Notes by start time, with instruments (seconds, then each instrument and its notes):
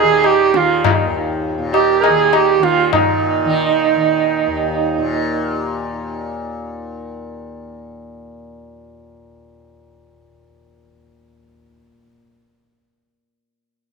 Already playing: tanpura D#2 A#2 D#3, sarangi G#4
0.03 tanpura D#3
0.24 sarangi G4, tabla na
0.54 tanpura D#3, sarangi F4, tabla te
0.85 sarangi D#4, tabla na, tabla ge
1.05 tanpura D#2
1.58 tanpura A#2
1.74 sarangi G4, tabla na
2.00 sarangi G#4 A#4, tabla na
2.09 tanpura D#3
2.33 sarangi G4, tabla na
2.59 tanpura D#3, tabla te
2.63 sarangi F4
2.93 tanpura A#2, sarangi D#4, tabla na, tabla ge
3.45 tanpura D#3
3.96 tanpura D#3
4.47 tanpura D#2
4.98 tanpura A#2